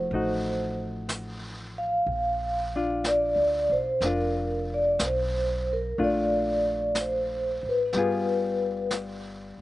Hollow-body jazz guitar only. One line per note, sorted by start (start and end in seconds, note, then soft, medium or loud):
0.00 2.08 F3 soft
0.00 0.12 A3 soft
0.00 0.13 D#4 soft
0.00 0.14 F#4 soft
0.13 2.08 A3 soft
0.13 2.08 D#4 soft
0.13 2.09 F#4 soft
2.76 4.03 D4 soft
2.76 4.04 F4 soft
4.04 5.98 D4 soft
4.04 5.98 F4 soft
5.98 7.93 A3 soft
5.98 7.94 D4 soft
5.98 7.95 F4 soft
7.94 9.61 G3 soft
7.94 9.61 B3 soft
7.94 9.61 F4 soft
7.99 9.61 G#4 soft